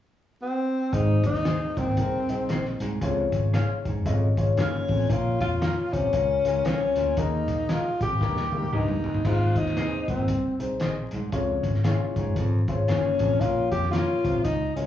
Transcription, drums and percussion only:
0.93 kick, closed hi-hat
1.23 kick, closed hi-hat
1.35 snare
1.45 snare, closed hi-hat
1.77 kick, closed hi-hat
1.97 kick, closed hi-hat
2.29 closed hi-hat
2.49 snare, closed hi-hat
2.66 snare
2.80 closed hi-hat
3.02 kick, closed hi-hat
3.32 kick, closed hi-hat
3.54 snare, closed hi-hat
3.85 kick, closed hi-hat
4.06 kick, closed hi-hat
4.37 kick, closed hi-hat
4.57 snare, closed hi-hat
4.88 kick, open hi-hat
5.10 kick, closed hi-hat
5.40 kick, closed hi-hat
5.62 snare, closed hi-hat
5.93 kick, closed hi-hat
6.13 kick, closed hi-hat
6.45 closed hi-hat
6.65 snare, closed hi-hat
6.96 closed hi-hat
7.17 kick, closed hi-hat
7.48 kick, closed hi-hat
7.69 snare, closed hi-hat
8.01 kick, closed hi-hat
8.21 kick, snare
8.37 snare
8.52 high tom
8.62 high tom
8.73 mid tom
8.88 mid tom
9.04 floor tom
9.14 floor tom
9.25 kick, crash
9.55 kick, closed hi-hat
9.66 snare
9.77 snare, closed hi-hat
10.08 kick, closed hi-hat
10.28 kick, closed hi-hat
10.60 closed hi-hat
10.80 snare, closed hi-hat
11.11 closed hi-hat
11.32 kick, closed hi-hat
11.63 kick, closed hi-hat
11.75 snare
11.84 snare, closed hi-hat
12.16 kick, closed hi-hat
12.36 kick, closed hi-hat
12.68 kick, closed hi-hat
12.88 snare, closed hi-hat
13.19 kick, closed hi-hat
13.41 kick, closed hi-hat
13.72 kick, closed hi-hat
13.83 snare
13.93 snare, closed hi-hat
14.25 kick, closed hi-hat
14.45 kick, closed hi-hat
14.77 closed hi-hat

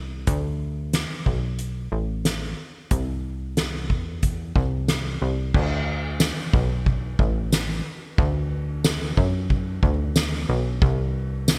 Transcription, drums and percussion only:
0.27 kick, closed hi-hat
0.93 snare, closed hi-hat
1.26 kick
1.59 closed hi-hat
2.25 snare, closed hi-hat
2.91 kick, closed hi-hat
3.57 snare, closed hi-hat
3.90 kick
4.23 kick, closed hi-hat
4.56 kick
4.88 snare, closed hi-hat
5.54 kick, crash
6.20 snare, ride, tambourine
6.54 kick
6.86 kick, ride
7.19 kick
7.52 snare, ride, tambourine
8.18 kick, ride
8.84 snare, ride, tambourine
9.17 kick
9.50 kick, ride
9.83 kick
10.16 snare, ride, tambourine
10.81 kick, ride
11.48 snare, ride, tambourine

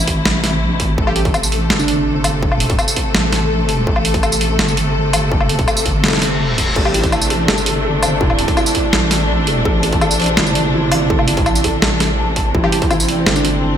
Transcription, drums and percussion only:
0.07 kick, closed hi-hat
0.26 snare
0.44 snare, closed hi-hat
0.80 kick, closed hi-hat
0.98 kick
1.07 low woodblock
1.16 closed hi-hat
1.25 kick, closed hi-hat
1.34 tambourine, low woodblock
1.43 tambourine
1.52 closed hi-hat
1.70 snare
1.79 tambourine
1.88 closed hi-hat
2.24 closed hi-hat, tambourine, low woodblock
2.43 kick
2.52 low woodblock
2.60 closed hi-hat
2.70 kick, closed hi-hat
2.79 tambourine, low woodblock
2.88 tambourine
2.96 kick, closed hi-hat
3.15 snare
3.33 snare, closed hi-hat
3.69 closed hi-hat
3.87 kick
3.96 low woodblock
4.05 closed hi-hat
4.14 kick, closed hi-hat
4.23 tambourine, low woodblock
4.32 tambourine
4.41 closed hi-hat
4.59 snare
4.68 tambourine
4.77 closed hi-hat
5.13 closed hi-hat, tambourine, low woodblock
5.32 kick
5.41 low woodblock
5.49 closed hi-hat
5.59 kick, closed hi-hat
5.68 tambourine, low woodblock
5.77 tambourine
5.86 kick, closed hi-hat
6.04 snare
6.08 snare
6.13 snare
6.18 snare
6.22 snare, closed hi-hat
6.58 kick, closed hi-hat
6.76 kick, crash
6.85 low woodblock
6.94 closed hi-hat
7.04 kick, closed hi-hat
7.12 tambourine, low woodblock
7.21 tambourine
7.30 closed hi-hat
7.48 snare
7.58 tambourine
7.66 closed hi-hat
8.03 tambourine, low woodblock
8.21 kick
8.30 low woodblock
8.39 closed hi-hat
8.48 kick, closed hi-hat
8.57 tambourine, low woodblock
8.66 tambourine
8.75 kick, closed hi-hat
8.93 snare
9.11 snare, closed hi-hat
9.47 closed hi-hat
9.65 kick
9.83 closed hi-hat
9.92 kick, closed hi-hat
10.01 tambourine, low woodblock
10.11 tambourine
10.20 closed hi-hat
10.22 closed hi-hat
10.24 closed hi-hat
10.26 closed hi-hat
10.37 snare
10.47 tambourine
10.55 closed hi-hat
10.92 closed hi-hat, tambourine, low woodblock
11.10 kick
11.19 low woodblock
11.28 closed hi-hat
11.37 kick, closed hi-hat
11.46 tambourine, low woodblock
11.55 tambourine
11.64 kick, closed hi-hat
11.82 snare
12.00 snare, closed hi-hat
12.36 kick, closed hi-hat
12.55 kick
12.64 low woodblock
12.72 closed hi-hat
12.82 kick, closed hi-hat
12.91 tambourine, low woodblock
13.00 tambourine
13.09 closed hi-hat
13.27 snare
13.36 tambourine
13.45 closed hi-hat

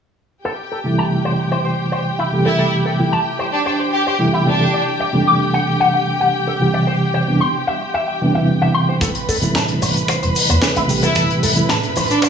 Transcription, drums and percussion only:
9.01 kick, closed hi-hat, shaker
9.15 closed hi-hat
9.29 open hi-hat, shaker
9.42 closed hi-hat, shaker
9.55 kick, snare, closed hi-hat, shaker
9.68 closed hi-hat
9.82 open hi-hat, shaker
9.96 closed hi-hat, shaker
10.08 kick, closed hi-hat, shaker
10.23 closed hi-hat
10.36 open hi-hat, shaker
10.49 closed hi-hat, shaker
10.62 kick, snare, closed hi-hat, shaker
10.76 closed hi-hat
10.89 open hi-hat, shaker
11.03 closed hi-hat, shaker
11.15 kick, closed hi-hat, shaker
11.30 closed hi-hat
11.43 open hi-hat, shaker
11.56 closed hi-hat, shaker
11.69 kick, snare, closed hi-hat, shaker
11.83 closed hi-hat
11.96 open hi-hat, shaker
12.10 closed hi-hat, shaker
12.22 kick, closed hi-hat, shaker

